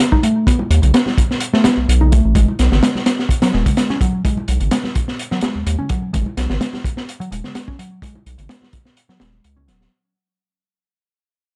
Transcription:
Already playing: B3
0.12 D#4, kick, high conga
0.23 A3, closed hi-hat
0.47 B3, kick, closed hi-hat
0.59 high conga
0.70 D#2, closed hi-hat
0.82 B1, closed hi-hat, low conga
0.94 B3, snare, closed hi-hat
1.06 snare, high conga
1.18 kick, closed hi-hat
1.31 snare
1.40 closed hi-hat
1.53 A3, snare
1.64 B3, snare, closed hi-hat, high conga
1.77 B1
1.88 B1, closed hi-hat
2.01 D#4, high conga, low conga
2.12 A3, kick, closed hi-hat
2.25 A1
2.35 G#1 G#3, kick, closed hi-hat
2.48 high conga
2.59 B1, snare, closed hi-hat
2.72 G#1, snare, low conga
2.83 G#3, snare, closed hi-hat
2.95 snare, high conga
3.06 snare, closed hi-hat
3.19 snare
3.29 kick, closed hi-hat
3.42 F#3, snare, closed hi-hat
3.53 D#1 G#3, snare, high conga
3.66 kick, closed hi-hat, low conga
3.77 snare, closed hi-hat
3.89 C#4, snare, high conga
4.01 F#3, kick, closed hi-hat
4.25 G#3, kick, closed hi-hat
4.37 high conga
4.48 B1, closed hi-hat
4.60 G#1, closed hi-hat, low conga
4.71 G#3, snare, closed hi-hat
4.84 snare, high conga
4.95 kick, closed hi-hat
5.08 snare
5.19 closed hi-hat
5.31 F#3, snare
5.41 G#3, snare, closed hi-hat, high conga
5.55 D#2
5.66 D#2, closed hi-hat
5.79 C#4, high conga, low conga
5.89 F#3, kick, closed hi-hat
6.13 G#1 G#3, kick, closed hi-hat
6.26 high conga
6.37 B1, snare, closed hi-hat
6.50 G#1, snare, low conga
6.61 G#3, snare, closed hi-hat
6.73 snare, high conga
6.84 kick, closed hi-hat
6.97 snare
7.09 closed hi-hat
7.20 F#3, closed hi-hat
7.31 D#1 G#3, closed hi-hat, high conga
7.44 snare, low conga
7.55 snare, closed hi-hat
7.68 C#4, kick, high conga
7.79 F#3, closed hi-hat
8.02 G#3, kick, closed hi-hat
8.15 high conga
8.26 B1, closed hi-hat
8.38 G#1, closed hi-hat, low conga
8.49 G#3, snare, closed hi-hat
8.62 snare, high conga
8.73 kick, closed hi-hat
8.85 snare
8.97 closed hi-hat
9.09 F#3, snare
9.20 D#1 G#3, snare, closed hi-hat, high conga
9.44 C#2, closed hi-hat
9.56 C#4, high conga, low conga
9.68 D#1 F#3, snare, closed hi-hat
9.81 snare

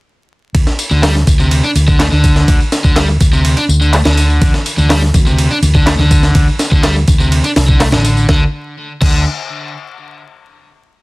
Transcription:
0.55 D2, kick, ride, tambourine
0.67 snare, tambourine
0.79 ride, tambourine
0.91 D2 D3, tambourine
1.03 G3, snare, clap, open hi-hat, tambourine
1.15 snare, tambourine
1.27 D2, kick, ride, tambourine
1.39 C3, tambourine
1.51 ride, tambourine
1.64 D4, tambourine
1.75 D2, ride, tambourine
1.88 D3, kick, tambourine
2.00 A3, snare, clap, ride, tambourine
2.12 D2 D3, tambourine
2.24 kick, ride, tambourine
2.36 snare, tambourine
2.48 D2, kick, ride, tambourine
2.61 tambourine
2.72 snare, ride, tambourine
2.84 D2 D3, kick, tambourine
2.96 G3, snare, clap, ride, tambourine
3.09 tambourine
3.20 D2, kick, ride, tambourine
3.33 C3, tambourine
3.45 ride, tambourine
3.57 D4, ride, tambourine
3.69 D2, tambourine
3.81 D3, tambourine
3.93 A3, clap, ride, tambourine
4.05 D2 D3, snare, tambourine
4.17 ride, tambourine
4.30 tambourine
4.41 D2, kick, ride, tambourine, high conga
4.54 snare, tambourine
4.66 ride, tambourine
4.78 D2 D3, tambourine, high conga
4.90 G3, snare, clap, open hi-hat, tambourine
5.02 snare, tambourine
5.14 D2, kick, ride, tambourine, high conga
5.27 C3, tambourine, low conga
5.38 ride, tambourine
5.51 D4, tambourine
5.62 D2, ride, tambourine, high conga
5.75 D3, kick, tambourine, low conga
5.87 A3, snare, clap, ride, tambourine
5.99 D2 D3, tambourine, high conga, low conga
6.11 kick, ride, tambourine
6.23 snare, tambourine
6.35 D2, kick, ride, tambourine, high conga
6.48 tambourine
6.59 snare, ride, tambourine
6.71 D2 D3, kick, tambourine, high conga
6.83 G3, snare, clap, ride, tambourine
6.96 tambourine
7.08 D2, kick, ride, tambourine, high conga
7.20 C3, tambourine, low conga
7.32 ride, tambourine
7.44 D4, ride, tambourine
7.56 C2, snare, open hi-hat, tambourine, high conga
7.68 D3, kick, tambourine, low conga
7.80 A3, snare, clap, open hi-hat, tambourine
7.92 A1 D3, snare, tambourine, high conga, low conga
8.05 ride, tambourine
8.17 tambourine
8.29 D2 D3, kick, snare
9.02 D2 D3, kick, crash

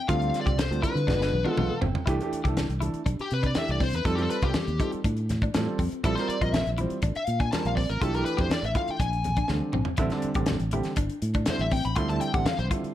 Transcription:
0.08 D2 D3 G3 C4 F4 F5, kick, closed hi-hat, muted conga
0.22 closed hi-hat
0.34 snare, closed hi-hat, muted conga
0.41 D5
0.46 C2 G4, kick, closed hi-hat
0.58 C5, snare, closed hi-hat, high conga
0.71 D2 D3 G3 C4 F4, closed hi-hat
0.82 E4 B4, kick, closed hi-hat
0.95 D3, closed hi-hat
1.07 G1 F3 G#3 B3 D4, kick, snare, muted conga, low conga
1.22 snare
1.33 B1, high conga
1.45 F3 G#3 B3 D4 F4, high tom
1.50 A4
1.57 B1 F5, mid tom, high conga
1.81 G1 B3 C4 F4 G5, floor tom, muted conga, low conga
1.95 floor tom
2.06 C2 E3 A3 D4 E4 G4, kick, closed hi-hat, muted conga
2.21 E3 A3 D4 G4, closed hi-hat
2.33 muted fingered electric bass stroke, closed hi-hat, muted conga
2.44 C2 E3 A3 D4 G4 A4, kick, closed hi-hat
2.57 snare, closed hi-hat, high conga
2.69 C2 D4 A4, closed hi-hat
2.80 E3 A3 D4 E4 A4, closed hi-hat, high conga
2.94 muted fingered electric bass stroke, closed hi-hat
3.06 B1 D4 G4, kick, closed hi-hat
3.19 G4, closed hi-hat
3.31 C3 B4, closed hi-hat
3.43 D4 D5, kick, closed hi-hat
3.55 E3 A3 D4 G4 E5, muted fingered electric bass stroke, snare, closed hi-hat, high conga
3.68 C2 D5, closed hi-hat
3.80 C4 C5, kick, open hi-hat, muted conga
3.93 E2 D4 A4 B4, closed hi-hat
4.05 F2 G3 C4 D#4 F4 A4, kick, closed hi-hat, muted conga
4.15 G3 C4 F4 G4 A4, closed hi-hat
4.22 A4
4.30 B4, closed hi-hat, muted conga
4.42 C2 G3 C4 F4 G4 A4, kick, closed hi-hat
4.54 muted fingered electric bass stroke, snare, closed hi-hat, high conga
4.68 D#2 F4 A4, closed hi-hat
4.79 G3 C4 D#4 F4 A4, kick, closed hi-hat
4.92 muted fingered electric bass stroke, closed hi-hat
5.04 A2 D4 F4 A4, kick, closed hi-hat, muted conga
5.17 closed hi-hat
5.29 snare, closed hi-hat, high conga, low conga
5.42 D4, kick, closed hi-hat
5.54 A2 G3 C4 F4 A4, snare, closed hi-hat, high conga
5.79 F2 C4, kick, open hi-hat
5.92 F4 A4, muted fingered electric bass stroke, closed hi-hat
6.04 A#1 G3 C4 E4 F4 A4, kick, closed hi-hat
6.15 G3 C4 F4 A#4 C5, snare, closed hi-hat
6.28 D5, muted fingered electric bass stroke, closed hi-hat, muted conga
6.41 A#1 G3 C4 F4 A#4 D#5, kick, closed hi-hat
6.53 E5, snare, closed hi-hat, high conga
6.66 A#1 F4 C5, closed hi-hat
6.78 G3 C4 E4 F4 C5, closed hi-hat, high conga
6.90 closed hi-hat
7.02 A1 D4 F4 A4, kick, closed hi-hat, muted conga
7.15 E5, muted fingered electric bass stroke, closed hi-hat
7.26 A#2 F5, closed hi-hat
7.40 D4 G#5, kick, closed hi-hat
7.52 G3 C4 F4 A#4 A5, muted fingered electric bass stroke, snare, closed hi-hat, high conga
7.65 A#1 F5, closed hi-hat
7.76 C4 D5, kick, open hi-hat, muted conga
7.89 A1 F4 A#4, closed hi-hat
8.01 B1 E3 A3 D4 F4 G4 A4, kick, closed hi-hat, muted conga
8.14 E3 A3 D4 G4 A#4, closed hi-hat
8.25 B4, closed hi-hat, muted conga
8.37 F2 E3 A3 D4 G4, kick, closed hi-hat
8.41 C5
8.50 D5, muted fingered electric bass stroke, snare, closed hi-hat, high conga
8.63 A1 D4 G4 E5, closed hi-hat
8.75 E3 A3 D4 E4 F4 F5, kick, closed hi-hat
8.88 G5, muted fingered electric bass stroke, closed hi-hat
8.99 A#1 D4 F4 G#5, kick, closed hi-hat, muted conga
9.13 closed hi-hat
9.24 closed hi-hat, high conga, low conga
9.36 D4, kick, closed hi-hat
9.48 D2 D3 G3 C4 D4, snare, high conga
9.73 A#1 C4, mid tom, muted conga
9.85 C4 D4, muted fingered electric bass stroke, floor tom
9.97 A1 D3 G3 C4 E4, kick, closed hi-hat, muted conga
10.10 D3 G3 C4 D4, snare, closed hi-hat
10.22 muted fingered electric bass stroke, closed hi-hat, muted conga
10.34 A1 D3 G3 C4 D4 G4, kick, closed hi-hat
10.46 snare, closed hi-hat, high conga
10.60 A1 C4 E4, closed hi-hat
10.71 D3 G3 C4 E4 G4, closed hi-hat, high conga
10.83 snare, closed hi-hat
10.96 G1 D4, kick, closed hi-hat, muted conga
11.10 closed hi-hat
11.22 A2, closed hi-hat
11.34 D4, kick, closed hi-hat
11.46 D3 G3 C4 E4, muted fingered electric bass stroke, snare, closed hi-hat, high conga
11.50 C5
11.59 A1 E5, closed hi-hat
11.71 C4 G5, kick, open hi-hat, muted conga
11.85 A1 C4 D4 B5, closed hi-hat
11.96 D2 D3 G3 C4 E4 F4 C6, kick, closed hi-hat, muted conga
12.09 D3 G3 C4 E4 A5, closed hi-hat
12.21 G5, closed hi-hat, muted conga
12.33 A1 D3 G3 C4 E4 G4 F#5, kick, closed hi-hat
12.45 F5, muted fingered electric bass stroke, snare, closed hi-hat, high conga
12.59 C2 C4 D4 C5, closed hi-hat
12.71 D3 G3 C4 E4 F4, kick, closed hi-hat
12.84 muted fingered electric bass stroke, closed hi-hat

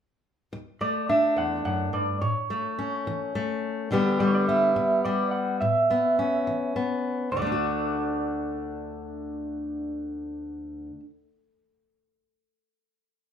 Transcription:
0.53 D2
0.81 A3 D5
1.09 D4 E5
1.36 E2 F#5
1.65 F#2 F#5
1.93 G2 D5
2.21 A2 C#5
2.50 A3
2.79 C#4
3.07 E3
3.35 A3
3.91 B2 D3 G3 B3 G4
4.20 G3 D5
4.27 C#5
4.35 D5
4.48 B3 E5
4.76 D3
5.05 G3 D5
5.31 F#5
5.61 A2 E5
5.90 B3
6.19 C#4
6.47 E3
6.76 B3
7.32 D2 D5
7.37 D3
7.42 A3
7.47 D4
7.52 F#4

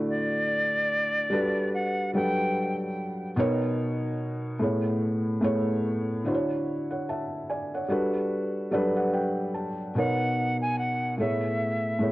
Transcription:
Already playing: D3 A3 E4 F#4 D5
0.10 D5
1.30 G3 D4 F#4 A4 B4
1.74 F#5
2.14 F#3 G3 D4 A4 B4 G5
3.36 B2 B3 D#4 A#4 C#5
4.59 A2 A3 B3 G#4 C#5
5.41 A2 A3 B3 G#4 C#5
6.24 D3 D4 E4 F#4 C5
6.34 C#5
6.91 C#5 F#5
7.09 E5 A5
7.50 D5 G#5
7.75 C#5 F#5
7.89 G3 D4 F#4 A4 B4
8.71 F#3 G3 D4 A4 B4 D5
8.97 F#5
9.13 G5
9.54 A5
9.95 B2 B3 D#4 A#4 C#5 F#5
10.61 G#5
10.79 F#5
11.17 A2 A3 B3 G#4 C#5 E5
11.99 A2 A3 B3 G#4 C#5

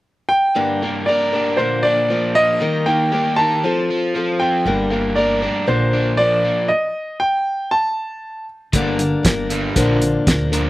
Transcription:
0.29 G5
0.55 G2 D3 G3 A#3 D4 A#4
0.82 G3 A#3 D4 A#4
1.06 G3 A#3 D4 A#4 D5
1.32 G3 A#3 D4 A#4
1.57 A#2 D3 F3 A#3 D4 A#4 C5
1.83 D4 D5
2.10 F3 A#3 D4 A#4
2.35 A#3 D#5
2.60 D#3 G3 A#3 D#4 A#4
2.86 A#3 D#4 A#4 G5
3.12 G3 A#3 D#4 G4 A#4
3.36 D#4 A#4 A5
3.41 A#3
3.63 F3 C4 F4 A4
3.90 F4
4.15 F3 C4 F4 A4
4.40 C4 G5
4.65 G1 G2 D3 G3 A#3 D4 A#4
4.92 G3 A#3 D4 A#4
5.15 G3 A#3 D4 D5
5.20 A#4
5.42 G3 A#3 D4 A#4
5.66 A#1 A#2 D3 F3 A#3 D4 A#4 C5
5.93 D4
6.17 F3 A#3 D4 A#4 D5
6.44 A#3
6.68 D#5
7.20 G5
7.71 A5
8.73 G1 G2 D3 G3 A#3 D4 A#4, kick, closed hi-hat
8.99 G2 D3, closed hi-hat
9.23 G1 G2 D3 G3 A#3 D4 A#4, kick, snare, closed hi-hat
9.50 G2 D3 G3, closed hi-hat
9.76 A#1 A#2 D3 F3 A#3 D4 A#4, kick, closed hi-hat
10.01 A#2 D3, closed hi-hat
10.27 D2 A#2 D3 F3 A#3 D4 A#4, kick, snare, closed hi-hat
10.52 A#2 D3 F3 A#3 D4 A#4, closed hi-hat

